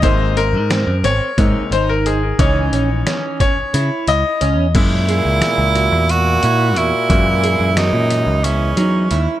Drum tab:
CC |-------|-------|x------|-------|
HH |xxxxxxx|xxxxxxx|xxxxxxx|xxxxxxx|
SD |--o----|--o----|--o----|--o----|
BD |o---o--|o--o---|o------|o------|